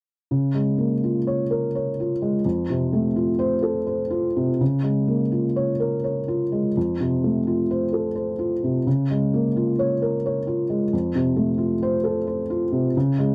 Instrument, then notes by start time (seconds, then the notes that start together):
felt piano
0.31 C#3
0.54 G#3
0.78 A#3
1.03 F4
1.27 C#5
1.51 A#4
1.75 C#5
2.00 F4
2.22 G#3
2.45 F2
2.70 C3
2.93 A3
3.16 F4
3.39 C5
3.63 A4
3.87 C5
4.10 F4
4.36 C3
4.61 C#3
4.83 G#3
5.07 A#3
5.32 F4
5.56 C#5
5.80 A#4
6.04 C#5
6.28 F4
6.52 G#3
6.77 F2
7.01 C3
7.24 A3
7.47 F4
7.71 C5
7.93 A4
8.15 C5
8.39 F4
8.64 C3
8.87 C#3
9.11 G#3
9.34 A#3
9.56 F4
9.79 C#5
10.02 A#4
10.26 C#5
10.47 F4
10.70 G#3
10.93 F2
11.15 C3
11.36 A3
11.58 F4
11.82 C5
12.04 A4
12.27 C5
12.50 F4
12.72 C3
12.97 C#3
13.18 G#3